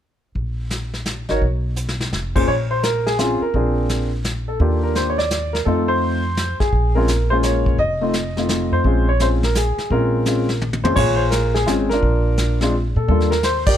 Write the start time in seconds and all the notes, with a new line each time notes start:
0.35 A#1, brush sweep, kick
0.70 snare, hi-hat pedal
0.94 snare
1.05 snare, hi-hat pedal
1.29 G#1 D#4 F#4 A#4 C#5, snare
1.41 B1, brush sweep, kick
1.76 hi-hat pedal
1.89 snare
2.01 snare
2.12 F1, snare
2.35 A#2 C#4 F4 G#4 C5, kick, crash
2.48 A#1 C#5, brush sweep, kick
2.71 C5
2.83 A#4, snare, hi-hat pedal
3.06 G#4, snare
3.19 C4 C#4 F4 G#4, snare, hi-hat pedal
3.41 A#4, muted upright bass stroke
3.54 A#1 C4 D4 F4 G#4, brush sweep, kick
3.89 snare, hi-hat pedal
4.24 snare, hi-hat pedal
4.48 A4
4.60 D#2 A#3 D4 F4 G4, brush sweep, kick
4.83 A#4
4.95 C5, snare, hi-hat pedal
5.10 C#5
5.18 D5, snare
5.31 snare, hi-hat pedal
5.53 A#4, snare
5.65 F2 A3 C4 D#4 F4 A4, brush sweep, kick
5.88 C5
6.37 snare, hi-hat pedal
6.60 G#4, muted upright bass stroke, kick, snare
6.72 A#1, brush sweep, kick
6.95 G#3 C4 C#4 F4 A#4
7.08 snare, hi-hat pedal
7.30 G#3 A#3 C#4 F4 C5
7.43 C#5, snare, hi-hat pedal
7.66 kick
7.78 F1 D#5, brush sweep, kick
8.01 A3 C4 D#4 F4
8.13 snare, hi-hat pedal
8.37 A3 C4 D#4 F4, snare
8.49 snare, hi-hat pedal
8.72 F2 C5
8.84 A#1 G#3 C4 C#4 F4, brush sweep, kick
9.09 C#5
9.20 G#3 C4 C#4 F4 C5, snare, hi-hat pedal
9.43 A#4, snare
9.55 G#4, snare, hi-hat pedal
9.78 muted upright bass stroke, snare
9.90 A#1 G#3 C4 C#4 F4 A#4, brush sweep, kick
10.25 G#3 C4 C#4 F4, snare, hi-hat pedal
10.49 snare
10.62 high tom
10.73 high tom
10.83 F2 A#2 G#3 C4 C#4 F4 C5, high tom
10.96 A#1 F4 G#4 C#5, brush sweep, kick, crash
11.16 C5
11.31 A#4, snare, hi-hat pedal
11.54 G#4, snare
11.66 G#1 G#3 C4 C#4 F4, snare, hi-hat pedal
11.89 D4 F4 A#4, snare
12.02 A#1, brush sweep, kick
12.38 snare, hi-hat pedal
12.61 G#3 C4 D4 F4, snare
12.96 A#2 A4
13.08 D#2 G3 A#3 D4 F4 A4, brush sweep, kick
13.21 snare
13.31 A#4, snare
13.43 C5, snare, hi-hat pedal
13.66 G4 A#4 D5, kick, ride